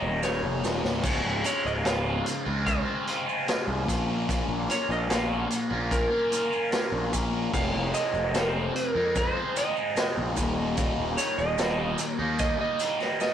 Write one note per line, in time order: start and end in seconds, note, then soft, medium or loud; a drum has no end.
0.00 0.42 D#1 loud
0.00 0.21 D#3 medium
0.00 0.22 G3 medium
0.00 0.22 A#3 medium
0.00 0.23 D#4 medium
0.00 0.23 C#5 medium
0.00 0.03 D#5 medium
0.21 1.01 D#2 loud
0.21 1.01 A#2 loud
0.21 0.61 D#3 loud
0.21 0.62 G3 loud
0.21 0.63 A#3 loud
0.21 0.64 D#4 loud
0.21 0.80 C#5 medium
0.21 snare medium
0.21 maracas medium
0.43 0.61 F1 medium
0.62 0.82 D#1 medium
0.62 0.85 D#3 medium
0.62 0.84 G3 medium
0.62 0.83 A#3 medium
0.62 0.81 D#4 medium
0.62 snare medium
0.62 maracas medium
0.83 1.02 C#1 medium
0.83 1.03 D#3 medium
0.83 1.02 G3 medium
0.83 1.02 A#3 medium
0.83 1.01 D#4 medium
0.83 snare medium
1.02 1.21 C#1 loud
1.02 1.83 C#2 medium
1.02 1.84 G#2 medium
1.02 1.42 C#3 medium
1.02 1.44 G#3 medium
1.02 1.44 C4 medium
1.02 1.46 F4 loud
1.02 kick loud
1.02 crash loud
1.02 maracas medium
1.24 1.42 C#1 loud
1.44 1.84 C#3 medium
1.44 1.86 G#3 medium
1.44 1.86 C4 medium
1.44 1.87 F4 medium
1.44 1.66 C#5 loud
1.44 closed hi-hat medium
1.44 maracas loud
1.65 1.83 C#1 medium
1.65 1.71 D#5 medium
1.65 maracas soft
1.84 2.20 C#1 medium
1.84 2.46 C#2 loud
1.84 2.46 G#2 loud
1.84 2.06 C#3 loud
1.84 2.06 G#3 loud
1.84 2.04 C4 loud
1.84 2.04 F4 loud
1.84 2.69 F5 loud
1.84 snare loud
1.84 closed hi-hat medium
1.84 maracas medium
2.04 2.24 C#3 medium
2.04 2.25 G#3 medium
2.04 2.25 C4 medium
2.04 2.26 F4 medium
2.25 muted overdriven electric guitar stroke soft
2.25 closed hi-hat medium
2.25 maracas medium
2.45 2.81 C#2 medium
2.45 2.88 C#3 medium
2.45 2.88 G#3 medium
2.45 2.86 C4 medium
2.45 2.85 F4 medium
2.66 3.84 C5 medium
2.66 kick loud
2.66 closed hi-hat medium
2.66 maracas medium
2.86 3.05 C#3 medium
2.86 3.07 G#3 medium
2.86 3.07 C4 medium
2.86 3.09 F4 medium
3.06 3.29 C#3 medium
3.06 3.29 G#3 medium
3.06 3.27 C4 medium
3.06 3.26 F4 medium
3.06 closed hi-hat medium
3.27 3.47 C#3 medium
3.27 3.48 G#3 medium
3.27 3.48 C4 medium
3.27 3.49 F4 medium
3.27 maracas soft
3.47 3.85 C#2 loud
3.47 3.86 G#2 loud
3.47 3.86 C#3 loud
3.47 3.89 G#3 loud
3.47 3.87 C4 loud
3.47 3.90 F4 loud
3.47 snare loud
3.47 closed hi-hat medium
3.47 maracas medium
3.68 3.85 C2 medium
3.87 4.41 A#1 medium
3.87 4.26 A#2 medium
3.87 4.28 F3 medium
3.87 4.10 A#3 medium
3.87 4.09 C#4 loud
3.87 4.09 F4 loud
3.87 4.07 A#4 medium
3.87 kick medium
3.87 closed hi-hat medium
3.87 maracas medium
4.08 4.28 A#3 medium
4.08 4.28 C#4 medium
4.08 4.29 F4 medium
4.08 4.29 A#4 medium
4.27 5.07 A#2 medium
4.27 5.08 F3 loud
4.27 4.66 A#3 medium
4.27 4.67 C#4 medium
4.27 4.69 F4 medium
4.27 4.70 A#4 medium
4.27 kick loud
4.27 closed hi-hat medium
4.27 maracas medium
4.49 4.66 A#1 medium
4.68 5.08 A#3 medium
4.68 5.09 C#4 medium
4.68 5.10 F4 medium
4.68 5.10 A#4 medium
4.68 4.91 C#5 medium
4.68 closed hi-hat medium
4.68 maracas loud
4.89 5.07 A#1 medium
4.89 4.97 D#5 medium
4.89 maracas soft
5.08 5.45 A#1 medium
5.08 5.70 A#2 medium
5.08 5.70 F3 loud
5.08 5.31 A#3 loud
5.08 5.30 C#4 loud
5.08 5.29 F4 loud
5.08 5.28 A#4 loud
5.08 5.88 F5 medium
5.08 snare loud
5.08 closed hi-hat medium
5.08 maracas medium
5.29 5.48 A#3 medium
5.29 5.48 C#4 medium
5.29 5.49 F4 medium
5.29 5.49 A#4 medium
5.49 muted overdriven electric guitar stroke soft
5.49 closed hi-hat medium
5.49 maracas medium
5.70 6.06 A#1 medium
5.70 6.13 A#3 medium
5.70 6.12 C#4 medium
5.70 6.11 F4 medium
5.70 6.09 A#4 medium
5.91 7.09 A#4 medium
5.91 kick loud
5.91 closed hi-hat medium
5.91 maracas medium
6.11 6.30 A#3 medium
6.11 6.31 C#4 medium
6.11 6.32 F4 medium
6.11 6.33 A#4 medium
6.31 6.52 A#3 medium
6.31 6.51 C#4 medium
6.31 6.50 F4 medium
6.31 6.49 A#4 medium
6.31 closed hi-hat medium
6.31 maracas medium
6.50 6.71 A#3 medium
6.50 6.72 C#4 medium
6.50 6.72 F4 medium
6.50 6.73 A#4 medium
6.50 maracas soft
6.71 7.50 A#2 loud
6.71 7.50 F3 loud
6.71 7.11 A#3 loud
6.71 7.12 C#4 loud
6.71 7.13 F4 loud
6.71 7.14 A#4 loud
6.71 snare loud
6.71 closed hi-hat medium
6.71 maracas medium
6.92 7.10 A#1 medium
7.12 7.48 A#1 medium
7.12 7.34 A#3 medium
7.12 7.33 C#4 medium
7.12 7.32 F4 medium
7.12 7.31 A#4 medium
7.12 kick medium
7.12 closed hi-hat medium
7.12 maracas medium
7.32 7.52 A#3 medium
7.32 7.52 C#4 medium
7.32 7.51 F4 medium
7.32 7.50 A#4 medium
7.52 7.71 F1 loud
7.52 8.32 F2 medium
7.52 8.33 C3 medium
7.52 7.92 F3 loud
7.52 7.93 G#3 medium
7.52 7.94 C4 medium
7.52 7.96 D#4 loud
7.52 7.93 F5 loud
7.52 kick loud
7.52 crash medium
7.52 maracas medium
7.74 7.91 F1 loud
7.93 8.34 F3 medium
7.93 8.35 G#3 medium
7.93 8.35 C4 medium
7.93 8.37 D#4 medium
7.93 8.36 D#5 loud
7.93 closed hi-hat medium
7.93 maracas medium
8.14 8.31 F1 loud
8.14 maracas soft
8.34 8.69 F1 medium
8.34 8.95 F2 medium
8.34 8.95 C3 loud
8.34 8.56 F3 loud
8.34 8.55 G#3 loud
8.34 8.54 C4 loud
8.34 8.53 D#4 loud
8.34 8.38 C5 medium
8.34 snare loud
8.34 closed hi-hat medium
8.34 maracas medium
8.41 8.48 A#4 medium
8.48 8.73 C5 medium
8.54 8.74 F3 medium
8.54 8.74 G#3 medium
8.54 8.74 C4 medium
8.54 8.76 D#4 medium
8.75 9.16 A#4 medium
8.75 muted overdriven electric guitar stroke soft
8.75 closed hi-hat medium
8.94 9.30 F2 medium
8.94 9.37 F3 medium
8.94 9.36 G#3 medium
8.94 9.35 C4 medium
8.94 9.34 D#4 medium
9.15 9.58 C5 loud
9.15 kick loud
9.15 closed hi-hat medium
9.15 maracas medium
9.35 9.54 F3 medium
9.35 9.55 G#3 medium
9.35 9.56 C4 medium
9.35 9.57 D#4 medium
9.55 9.77 F3 medium
9.55 9.76 G#3 medium
9.55 9.75 C4 medium
9.55 9.74 D#4 medium
9.55 10.34 D#5 medium
9.55 closed hi-hat medium
9.55 maracas loud
9.75 9.95 F3 medium
9.75 9.96 G#3 medium
9.75 9.96 C4 medium
9.75 9.97 D#4 medium
9.75 maracas soft
9.95 10.34 F2 loud
9.95 10.34 C3 loud
9.95 10.34 F3 loud
9.95 10.35 G#3 loud
9.95 10.35 C4 loud
9.95 10.35 D#4 loud
9.95 snare loud
9.95 closed hi-hat medium
9.95 maracas medium
10.17 10.35 A#1 medium
10.36 10.89 D#1 medium
10.36 10.75 D#2 medium
10.36 10.76 A#2 loud
10.36 10.58 D#3 medium
10.36 10.57 G3 medium
10.36 10.56 A#3 loud
10.36 10.55 D#4 loud
10.36 kick medium
10.36 closed hi-hat medium
10.36 maracas medium
10.56 10.76 D#3 medium
10.56 10.77 G3 medium
10.56 10.77 A#3 medium
10.56 10.78 D#4 medium
10.76 11.56 D#2 medium
10.76 11.57 A#2 medium
10.76 11.16 D#3 medium
10.76 11.18 G3 medium
10.76 11.18 A#3 loud
10.76 11.19 D#4 medium
10.76 kick loud
10.76 closed hi-hat medium
10.76 maracas medium
10.98 11.15 D#1 loud
11.17 11.58 D#3 medium
11.17 11.59 G3 medium
11.17 11.59 A#3 medium
11.17 11.59 D#4 medium
11.17 11.39 C#5 medium
11.17 closed hi-hat medium
11.17 maracas loud
11.38 11.56 D#1 medium
11.38 12.11 D#5 medium
11.38 maracas soft
11.58 11.93 D#1 medium
11.58 12.19 D#2 loud
11.58 12.19 A#2 loud
11.58 11.79 D#3 loud
11.58 11.78 G3 loud
11.58 11.77 A#3 loud
11.58 11.76 D#4 loud
11.58 snare loud
11.58 closed hi-hat medium
11.58 maracas medium
11.77 11.98 D#3 medium
11.77 11.98 G3 medium
11.77 11.98 A#3 medium
11.77 11.99 D#4 medium
11.98 muted overdriven electric guitar stroke soft
11.98 closed hi-hat medium
11.98 maracas medium
12.11 12.38 C#5 medium
12.19 12.54 D#2 medium
12.19 12.61 D#3 medium
12.19 12.60 G3 medium
12.19 12.59 A#3 medium
12.19 12.58 D#4 medium
12.39 12.60 D#5 loud
12.39 kick loud
12.39 closed hi-hat medium
12.39 maracas medium
12.59 12.78 D#3 medium
12.59 12.80 G3 medium
12.59 12.81 A#3 medium
12.59 12.82 D#4 medium
12.59 13.20 D#5 medium
12.79 13.01 D#3 medium
12.79 13.00 G3 medium
12.79 12.99 A#3 medium
12.79 12.98 D#4 medium
12.79 closed hi-hat medium
12.79 maracas medium
12.99 13.20 D#3 medium
12.99 13.21 G3 medium
12.99 13.21 A#3 medium
12.99 13.22 D#4 medium
12.99 snare soft
12.99 maracas soft
13.20 13.34 D#2 loud
13.20 13.34 A#2 loud
13.20 13.34 D#3 loud
13.20 13.34 G3 loud
13.20 13.34 A#3 loud
13.20 13.34 D#4 loud
13.20 13.34 D#5 medium
13.20 snare medium
13.20 maracas medium